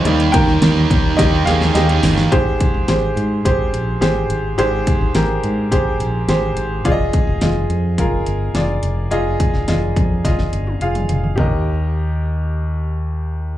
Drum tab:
HH |xxx-x-x-x-x-xxo-|x-x-x-x-x-x-x-x-|x-x-x-x-x-x-x-x-|x-x-x-x-x-x-x-x-|
SD |---oo---o-ooo-oo|----o-------o---|----o-------o---|----o-------o---|
T1 |----------------|----------------|----------------|----------------|
T2 |----------------|----------------|----------------|----------------|
FT |----------------|----------------|----------------|----------------|
BD |--o---o-o-------|o-o-----o-------|--o-----o-------|o-o-----o-------|

HH |x-x-x-x-x-x-xxx-|----------------|
SD |---oo---oo------|----------------|
T1 |-----------o----|----------------|
T2 |-------------o--|----------------|
FT |--------------oo|o---------------|
BD |--o---o-o-------|o---------------|